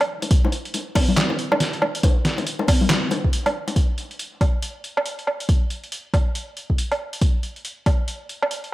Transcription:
0.01 closed hi-hat soft
0.01 low woodblock medium
0.22 closed hi-hat medium
0.22 high bongo soft
0.31 kick loud
0.31 closed hi-hat medium
0.45 high bongo medium
0.52 closed hi-hat medium
0.65 closed hi-hat soft
0.74 closed hi-hat medium
0.74 high bongo medium
0.95 kick loud
0.95 open hi-hat loud
0.95 high bongo medium
0.95 high conga medium
0.95 low woodblock medium
1.08 low conga loud
1.17 snare loud
1.17 clap medium
1.17 closed hi-hat medium
1.17 high conga medium
1.30 high bongo medium
1.39 closed hi-hat medium
1.52 high bongo medium
1.52 low woodblock medium
1.60 snare medium
1.60 closed hi-hat medium
1.73 closed hi-hat soft
1.82 high bongo medium
1.82 low woodblock medium
1.95 closed hi-hat medium
2.03 kick loud
2.03 closed hi-hat medium
2.03 high bongo medium
2.25 snare medium
2.25 closed hi-hat medium
2.38 closed hi-hat soft
2.38 high bongo medium
2.47 closed hi-hat medium
2.59 high bongo medium
2.68 kick loud
2.68 open hi-hat loud
2.68 high conga medium
2.68 low woodblock medium
2.81 low conga medium
2.89 snare loud
2.89 clap medium
2.89 closed hi-hat medium
2.89 high bongo medium
2.89 high conga medium
3.11 closed hi-hat medium
3.11 high bongo medium
3.24 kick medium
3.33 closed hi-hat medium
3.46 closed hi-hat soft
3.46 high bongo medium
3.46 low woodblock medium
3.68 closed hi-hat medium
3.68 high bongo medium
3.76 kick loud
3.76 closed hi-hat medium
3.98 closed hi-hat soft
4.11 closed hi-hat soft
4.19 closed hi-hat medium
4.41 kick loud
4.41 closed hi-hat soft
4.41 low woodblock soft
4.62 closed hi-hat medium
4.84 closed hi-hat soft
4.97 low woodblock medium
5.06 closed hi-hat medium
5.19 closed hi-hat soft
5.27 low woodblock soft
5.40 closed hi-hat medium
5.49 kick loud
5.49 closed hi-hat medium
5.70 closed hi-hat soft
5.84 closed hi-hat soft
5.92 closed hi-hat medium
6.14 kick loud
6.14 closed hi-hat soft
6.14 low woodblock soft
6.35 closed hi-hat medium
6.57 closed hi-hat soft
6.70 kick medium
6.78 closed hi-hat medium
6.92 closed hi-hat soft
6.92 low woodblock medium
7.13 closed hi-hat medium
7.21 kick loud
7.21 closed hi-hat medium
7.43 closed hi-hat soft
7.56 closed hi-hat soft
7.65 closed hi-hat medium
7.86 kick loud
7.86 closed hi-hat soft
7.86 low woodblock soft
8.08 closed hi-hat medium
8.29 closed hi-hat soft
8.42 low woodblock medium
8.51 closed hi-hat medium
8.64 closed hi-hat soft

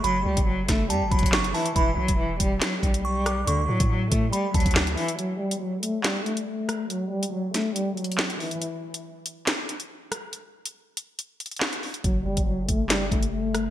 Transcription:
0.04 0.25 F#1 loud
0.04 0.24 F#3 medium
0.04 0.86 B5 loud
0.04 closed hi-hat medium
0.26 0.37 C#2 loud
0.26 0.45 G3 medium
0.37 0.67 F#1 loud
0.37 kick loud
0.37 closed hi-hat medium
0.47 0.67 F#3 medium
0.69 0.92 F#1 loud
0.69 0.88 A3 medium
0.69 kick medium
0.69 snare medium
0.69 closed hi-hat loud
0.90 1.03 F#2 loud
0.90 1.10 G3 medium
0.90 1.10 A5 medium
0.90 closed hi-hat medium
1.01 1.11 F#1 loud
1.11 1.22 F#1 loud
1.11 1.52 F#3 medium
1.11 1.32 B5 medium
1.11 kick loud
1.11 closed hi-hat soft
1.19 closed hi-hat medium
1.23 1.32 F#1 loud
1.23 kick loud
1.23 closed hi-hat medium
1.33 1.54 F#1 loud
1.33 1.53 C#6 medium
1.33 snare loud
1.33 clap medium
1.44 closed hi-hat medium
1.54 1.74 E3 medium
1.54 1.75 A5 medium
1.54 open hi-hat medium
1.66 closed hi-hat medium
1.76 1.96 E1 loud
1.76 1.95 E3 medium
1.76 3.01 B5 loud
1.76 kick loud
1.76 closed hi-hat medium
1.97 2.08 B1 loud
1.97 2.17 F#3 medium
2.08 2.39 E1 loud
2.08 kick loud
2.08 closed hi-hat medium
2.19 2.38 E3 medium
2.40 2.61 E1 loud
2.40 2.59 G3 medium
2.40 kick medium
2.40 closed hi-hat loud
2.61 2.81 F#3 medium
2.61 snare loud
2.61 clap medium
2.61 closed hi-hat medium
2.83 3.45 B1 loud
2.83 3.02 G3 medium
2.83 kick loud
2.83 closed hi-hat medium
2.94 closed hi-hat medium
3.04 3.45 G3 medium
3.04 3.25 C#6 medium
3.26 3.46 D6 medium
3.26 cross-stick loud
3.26 closed hi-hat medium
3.47 3.68 D2 loud
3.47 3.66 D3 medium
3.47 4.29 C#6 loud
3.47 closed hi-hat medium
3.69 3.80 A2 loud
3.69 3.88 F#3 medium
3.80 4.10 A2 loud
3.80 kick loud
3.80 closed hi-hat medium
3.90 4.09 F#3 medium
4.11 4.32 A2 loud
4.11 4.31 A3 medium
4.11 kick medium
4.11 closed hi-hat loud
4.33 4.52 G3 medium
4.33 4.53 B5 medium
4.33 closed hi-hat medium
4.54 4.65 D2 loud
4.54 4.95 F#3 medium
4.54 4.75 A5 medium
4.54 kick loud
4.54 closed hi-hat medium
4.60 closed hi-hat medium
4.66 4.75 D2 loud
4.66 kick loud
4.66 closed hi-hat medium
4.71 closed hi-hat medium
4.76 4.96 D2 loud
4.76 snare loud
4.76 clap medium
4.87 closed hi-hat medium
4.97 5.16 E3 medium
4.97 open hi-hat medium
5.08 closed hi-hat medium
5.19 5.38 F#3 medium
5.19 closed hi-hat medium
5.40 5.59 G3 medium
5.51 closed hi-hat medium
5.61 5.81 F#3 medium
5.83 6.02 A3 medium
5.83 closed hi-hat loud
6.04 6.24 G3 loud
6.04 snare loud
6.04 clap medium
6.04 closed hi-hat medium
6.26 6.45 A3 medium
6.26 closed hi-hat medium
6.37 closed hi-hat medium
6.47 6.87 A3 medium
6.69 cross-stick medium
6.69 closed hi-hat medium
6.90 7.09 F#3 medium
6.90 closed hi-hat medium
7.11 7.31 G3 medium
7.23 closed hi-hat medium
7.33 7.52 F#3 medium
7.54 7.74 A3 medium
7.54 snare medium
7.54 closed hi-hat loud
7.76 7.95 G3 medium
7.76 closed hi-hat medium
7.97 8.37 F#3 medium
7.97 closed hi-hat soft
8.04 closed hi-hat medium
8.12 closed hi-hat medium
8.18 snare loud
8.18 clap medium
8.30 closed hi-hat medium
8.40 8.59 E3 medium
8.40 open hi-hat medium
8.51 closed hi-hat medium
8.62 closed hi-hat medium
8.94 closed hi-hat medium
9.26 closed hi-hat loud
9.47 snare loud
9.47 clap medium
9.47 closed hi-hat medium
9.69 closed hi-hat medium
9.80 closed hi-hat medium
10.12 cross-stick medium
10.12 closed hi-hat medium
10.33 closed hi-hat medium
10.65 closed hi-hat medium
10.97 closed hi-hat loud
11.19 closed hi-hat medium
11.40 closed hi-hat medium
11.46 closed hi-hat medium
11.51 closed hi-hat medium
11.56 closed hi-hat medium
11.61 snare loud
11.61 clap medium
11.73 closed hi-hat medium
11.83 open hi-hat medium
11.94 closed hi-hat medium
12.04 12.25 F#1 loud
12.04 12.24 F#3 medium
12.04 kick loud
12.04 closed hi-hat medium
12.26 12.37 F#1 loud
12.26 12.45 G3 medium
12.37 12.67 F#1 loud
12.37 kick loud
12.37 closed hi-hat medium
12.47 12.67 F#3 medium
12.69 13.10 F#1 loud
12.69 12.88 A3 medium
12.69 kick medium
12.69 closed hi-hat loud
12.90 13.09 G3 loud
12.90 snare loud
12.90 clap medium
12.90 closed hi-hat medium
13.11 13.70 F#1 loud
13.11 13.31 A3 medium
13.11 kick loud
13.11 closed hi-hat medium
13.23 closed hi-hat medium
13.33 13.70 A3 medium
13.54 cross-stick medium
13.54 closed hi-hat medium

